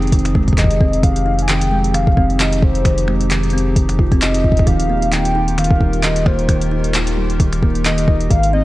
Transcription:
Already playing: F1 F3 C4 D#4 G4 G#4
0.02 closed hi-hat
0.07 closed hi-hat
0.12 D#3, kick, closed hi-hat
0.19 closed hi-hat
0.25 finger snap, closed hi-hat
0.35 G#3, kick
0.48 kick, closed hi-hat
0.53 kick
0.58 D#3 D#5, kick, clap, closed hi-hat
0.64 kick
0.71 closed hi-hat
0.81 C4, kick
0.93 closed hi-hat
1.03 D#3 F5, kick, closed hi-hat
1.16 closed hi-hat
1.26 D#4
1.39 G#5, closed hi-hat
1.49 D#3 G5, clap, closed hi-hat
1.62 closed hi-hat
1.71 G#3
1.84 closed hi-hat
1.94 D#3 F5, finger snap, closed hi-hat
2.07 kick
2.17 C4, kick
2.30 closed hi-hat
2.40 D#3 D#5, clap, closed hi-hat
2.52 closed hi-hat
2.62 D#4 C5, kick
2.75 closed hi-hat
2.85 D#3, finger snap, kick, closed hi-hat
2.98 closed hi-hat
3.08 G#3, finger snap
3.21 closed hi-hat
3.31 D#3, clap, closed hi-hat
3.43 closed hi-hat
3.50 C4, closed hi-hat
3.58 closed hi-hat
3.76 D#3, kick, closed hi-hat
3.89 finger snap, closed hi-hat
3.99 F4, kick
4.11 C4, kick, closed hi-hat
4.21 D#4 D#5, clap, closed hi-hat
4.34 closed hi-hat
4.44 F4, kick
4.52 kick
4.57 kick, closed hi-hat
4.67 D#1 D#3 F5, kick, closed hi-hat
4.80 closed hi-hat
4.89 A#3 F4
5.02 closed hi-hat
5.12 D#3 G5, clap, closed hi-hat
5.24 A#4, closed hi-hat
5.35 D#4
5.48 closed hi-hat
5.58 D#3 F5, finger snap, closed hi-hat
5.64 closed hi-hat
5.71 kick
5.81 G3, kick
5.93 closed hi-hat
6.03 D#3 D#5, clap, closed hi-hat
6.16 closed hi-hat
6.26 A#3 C5, finger snap, kick
6.39 closed hi-hat
6.49 D#3, finger snap, kick, closed hi-hat
6.62 closed hi-hat
6.72 D#4
6.84 closed hi-hat
6.94 D#3, clap, closed hi-hat
7.07 closed hi-hat
7.17 G3
7.30 closed hi-hat
7.40 D#3, kick, closed hi-hat
7.52 finger snap, closed hi-hat
7.62 A#3, kick
7.75 closed hi-hat
7.85 D#3 D#5, clap, closed hi-hat
7.98 closed hi-hat
8.08 D#4, kick
8.21 closed hi-hat
8.31 G#1 D#3 G#3 F5, kick, closed hi-hat
8.43 closed hi-hat
8.52 C4 G#4 D#5

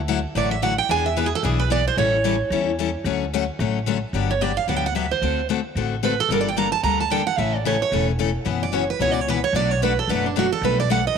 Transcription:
Already playing: D2
0.08 D3 F#3 A3 E4 F#4
0.35 A1 D3 F#3 A3 E4 F#4 D5
0.51 E5
0.62 D3 F#3 A3 E4 F#4 F#5
0.78 G5
0.89 E2 E3 B3 D4 G#4 G#5
1.06 E5
1.16 E3 B3 D4 G#4 B4
1.26 G#4
1.35 A4
1.43 B1 E3 B3 D4 G#4
1.60 B4
1.70 E3 B3 D4 G#4 D5
1.88 C5
1.97 A1 E3 G3 C#4 E4 A4 C#5
2.24 E3 G3 C#4 E4 A4
2.50 E2 E3 G3 C#4 E4 A4
2.79 E3 G3 C#4 E4 A4
3.04 D2 D3 F#3 A3 C#4 F#4
3.33 D3 F#3 A3 C#4 F#4
3.59 A1 D3 F#3 A3 C#4 F#4
3.86 D3 F#3 A3 C#4 F#4
4.13 G1 D3 F#3 B3 D4 G4
4.31 C#5
4.41 D3 F#3 B3 D4 G4 D5
4.57 F5
4.67 D2 D3 F#3 B3 D4 G4 F#5
4.77 G5
4.86 F#5
4.95 D3 F#3 B3 D4 G4 E5
5.11 C5
5.22 D2 D3 A3 C4 F#4 A4
5.49 D3 A3 C4 F#4 A4
5.75 A1 D3 A3 C4 F#4 A4
6.03 D3 A3 C4 F#4 A4 B4
6.20 A4
6.29 G1 D3 G3 A#3 D4 A4 A#4
6.41 D5
6.48 G5
6.56 D3 G3 A#3 D4 A4 A#5
6.72 A5
6.83 D2 D3 G3 A#3 D4 A4 A#5
7.00 A5
7.10 D3 G3 A#3 D4 A4 G5
7.27 F#5
7.38 A1 C#3 E3 A3 C#4 A4 E5
7.55 D5
7.65 C#3 E3 A3 C#4 A4 C#5
7.82 C#5
7.92 E1 C#3 E3 A3 C#4 A4
8.19 C#3 E3 A3 C#4 A4
8.45 F#1 B2 E3 B3 C#4 F#4
8.63 D5
8.72 B2 E3 B3 C#4 F#4 C#5
8.90 B4
8.99 C#2 B2 E3 B3 C#4 F#4 C#5
9.12 D5
9.21 C#5
9.28 B2 E3 B3 C#4 F#4 B4
9.44 C#5
9.53 B1 B2 F#3 A3 D4 F#4 D5
9.71 C#5
9.82 B2 F#3 A3 D4 F#4 B4
9.99 A4
10.08 F#1 B2 F#3 A3 D4 F#4 B4
10.26 D4
10.36 B2 F#3 A3 D4 F#4
10.52 A4
10.61 B1 B2 G3 A3 D4 A4 B4
10.80 D5
10.90 B2 G3 A3 D4 A4 F#5
11.07 D#5

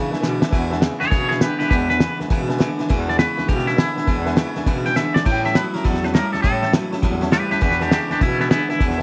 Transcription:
Already playing: E2 B2 C#3 E3 G#3 D4 E4
0.11 C#3 G#3 D4 E4 B4 E5 G#5, snare
0.16 E3
0.21 E2 B2 D3 E3 B4 E5 G#5, snare, hi-hat pedal
0.25 G#3 D4 E4
0.41 B2 E3 G#3 D4 E4 B4 E5 G#5, snare
0.51 E2 B2 E3 G#3 D4 B4 E5 G#5, kick, snare
0.55 E4
0.70 G#3 D4 E4 B4 E5 G#5, snare
0.75 E3
0.81 E2 C#3 E3 G#3 D4 E4 B4 G#5, snare, hi-hat pedal
1.00 E2 G#3 D4 E4 G#4 B4 C#5 E5 G#5, snare
1.04 E3
1.10 E2 B2 C#3 E3 G#3 D4 E4 G#4 B4 C#5 E5 G#5, kick, snare
1.29 G#3 D4 E4 G#4 B4 C#5 E5 G#5, snare
1.33 E3
1.40 E2 D3 E3 G#3 D4 E4 G4 B4 E5 G#5, snare, hi-hat pedal
1.59 B2 E3 G#3 D4 E4 G4 B4 E5 G#5, snare
1.70 E2 B2 E3 G#3 D4 E4 G4 B4 E5 G#5, kick, snare
1.89 E3 G#3 D4 E4 B4 E5 G#5, snare
2.00 E2 C#3 E3 G#3 D4 E4 B4 E5 G#5, snare, hi-hat pedal
2.20 E2 E3 G#3 D4 E4 B4 E5 G#5, snare
2.29 E2 B2 C#3 E3 G#3 D4 E4 B4 E5 G#5, kick, snare
2.49 E3 G#3 D4 E4 B4 E5 G#5, snare
2.58 E2 D3 E3 G#3 D4 E4 B4 E5 G#5 B5, snare, hi-hat pedal
2.79 B2 E3 G#3 D4 E4 B4 E5 G#5, snare
2.89 E2 B2 E3 G#3 D4 E4 B4 E5 G#5, kick, snare
3.08 E3 G#3 D4 E4 B4 D5 E5 G#5, snare
3.18 E2 C#3 E3 G#3 D4 E4 B4 E5 G#5, snare, hi-hat pedal
3.37 E2 E3 G#3 D4 E4 B4 E5 G#5, snare
3.47 E2 B2 C#3 E3 G#3 D4 E4 G4 B4 E5 G#5, kick, snare
3.59 snare
3.67 E3 G#3 D4 E4 B4 E5 G#5, snare
3.77 E2 D3 E3 G#3 D4 E4 B4 E5 G#5, snare, hi-hat pedal
3.96 B2 E3 G#3 D4 E4 B4 E5 G#5, snare
4.06 E2 B2 E3 G#3 D4 E4 B4 E5 G#5, kick, snare
4.25 E3 G#3 D4 E4 B4 E5 G#5, snare
4.36 E2 C#3 E3 G#3 D4 E4 B4 E5 G#5, snare, hi-hat pedal
4.56 E2 E3 G#3 D4 E4 B4 E5 G#5, snare
4.66 E2 B2 C#3 E3 G#3 D4 E4 B4 E5 G#5, kick, snare
4.85 E3 G#3 D4 E4 B4 E5 G5 G#5, snare
4.95 E2 D3 E3 G#3 D4 E4 B4 E5 G#5, snare, hi-hat pedal
5.14 B2 E3 G#3 D4 E4 B4 D5 E5 G#5, snare
5.24 A2 E3 G3 C#4 E4 C#5 E5 G5 A5, kick, snare, crash
5.44 G3 C#4 E4 C#5 E5 A5, snare
5.55 A2 E3 F#3 G3 C#4 E4 B4 C#5 E5 A5, snare, hi-hat pedal
5.74 G3 C#4 E4 A#4 C#5 E5 A5, snare
5.84 E2 A2 E3 F#3 G3 C#4 E4 A4 C#5 E5 A5, kick, snare
5.95 snare
6.02 G3 C#4 E4 B4 C#5 E5 A5, snare
6.14 A2 E3 G3 C#4 E4 A#4 C#5 E5 A5, snare, hi-hat pedal
6.32 E2 G3 C#4 E4 A4 C#5 E5 A5, snare
6.42 A2 E3 G3 C#4 E4 A4 C#5 E5 A5, kick, snare
6.62 G3 C#4 E4 C#5 E5 A5, snare
6.73 A2 E3 F#3 G3 C#4 E4 C#5 E5 A5, snare, hi-hat pedal
6.92 A2 G3 C#4 E4 C#5 E5 A5, snare
7.02 E2 A2 E3 F#3 G3 C#4 E4 C#5 E5 A5, kick, snare
7.21 G3 C#4 E4 C#5 E5 A5, snare
7.31 A2 E3 G3 C#4 E4 G4 B4 C#5 E5 A5, snare, hi-hat pedal
7.50 E2 G3 C#4 E4 G4 B4 C#5 E5 A5, snare
7.61 E2 B2 E3 G#3 D4 E4 G4 B4 E5 G#5, kick, snare
7.71 snare
7.80 E3 G#3 D4 E4 G4 B4 E5 G#5, snare
7.91 E2 C#3 E3 G#3 D4 E4 G4 B4 E5, snare, hi-hat pedal
8.10 E2 E3 G#3 D4 E4 G4 B4 E5 G#5, snare
8.20 E2 B2 C#3 E3 G#3 B3 D4 E4 B4 E5 G#5, kick, snare
8.39 E3 G#3 B3 D4 E4 B4 E5 G#5, snare
8.49 E2 D3 E3 G#3 B3 D4 E4 B4 E5 G#5, snare, hi-hat pedal
8.69 B2 E3 G#3 D4 E4 B4 E5 G#5, snare
8.79 E2 B2 E3 G#3 D4 E4 B4 E5 G#5, kick, snare
8.90 snare
8.98 B4 E5 G#5

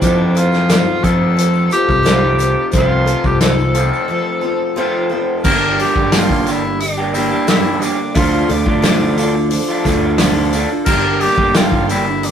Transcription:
0.01 F2 C3 F3 A3 C4 D4 F4 A4, kick, closed hi-hat, tambourine
0.35 C4 F4 A4, closed hi-hat, tambourine
0.52 snare, tambourine
0.69 F3 C4 F4 A4, snare, closed hi-hat, tambourine
1.03 F2 C3 F3 A3 C4 F4 A4, kick, closed hi-hat, tambourine
1.37 F3 C4 F4 A4, closed hi-hat, tambourine
1.53 tambourine
1.70 C4 F4 G4 A4, closed hi-hat, tambourine
1.88 C2, kick, tambourine
2.03 F2 C3 F3 C4 F4 A4, snare, closed hi-hat, tambourine
2.08 F3 A3 C4
2.38 C4 F4 A4, closed hi-hat, tambourine
2.72 C2 F2 C3 F3 C4 F4 A4, kick, closed hi-hat, tambourine
2.76 A3 F4
3.06 C4 F4 A4, closed hi-hat
3.24 C2 G4, kick, tambourine
3.41 F3 C4 F4 A4, snare, closed hi-hat, tambourine
3.59 tambourine
3.74 F2 C3 F3 A3 C4 F4 A4, closed hi-hat, tambourine
3.93 tambourine
4.08 F3 C4 F4 A4
4.41 C4 F4 A4
4.76 F2 C3 F3 A3 C4 F4 A4
5.09 C4 F4 A4
5.44 G1 G2 D3 G3 A#3 D4 G4 A#4, kick, crash, tambourine
5.79 G3 A#3 D4 G4, open hi-hat
5.96 G1 G3 A#3 D4 G4, kick
6.12 G2 D3 G3 A#3 D4 G4, snare, open hi-hat, tambourine
6.17 F4
6.29 G1, kick
6.46 G3 A#3 D4 G4, open hi-hat, tambourine
6.50 E4
6.63 muted clean electric guitar stroke
6.80 G3 A#3 D4 G4, open hi-hat
6.98 G3 A#3 D4 G4
7.14 G3 A#3 D4 E4 G4, open hi-hat, tambourine
7.31 G3 A#3 D4 G4
7.47 G2 D3 G3 A#3 D4 E4 G4, snare, open hi-hat, tambourine
7.81 G3 A#3 D4 G4, open hi-hat, tambourine
7.99 muted clean electric guitar stroke
8.15 D2 D3 F3 A3 D4 F4 A4, kick, open hi-hat, tambourine
8.49 D2 D4 F4 A4, open hi-hat
8.66 D2 A3 D4 F4, kick
8.82 D3 F3 A3 D4 F4 A4, snare, open hi-hat, tambourine
9.17 D3 A3 D4 F4 A4, open hi-hat, tambourine
9.35 muted clean electric guitar stroke
9.50 F3 D4 F4 A4, open hi-hat
9.69 A3 D4 F4
9.84 D2 D3 A3 D4 F4 A4, kick, snare, open hi-hat, tambourine
10.02 A3 D4 F4
10.18 D3 F3 A3 D4 F4 A4, snare, open hi-hat, tambourine
10.53 D3 A3 D4 F4 A4, open hi-hat, tambourine
10.70 muted clean electric guitar stroke
10.85 G1 G2 D3 G3 A#4, kick, crash, tambourine
10.89 A#3 D4 G4
11.21 A#3 D4 G4, open hi-hat
11.25 G3
11.37 G1 G3 A#3 D4 G4, kick
11.54 G2 D3 G3 A#3 D4 F4 G4, snare, open hi-hat, tambourine
11.72 G1, kick
11.89 G3 A#3 D4 E4 G4, open hi-hat, tambourine
12.07 muted clean electric guitar stroke
12.23 G3 A#3 D4, open hi-hat
12.27 G4

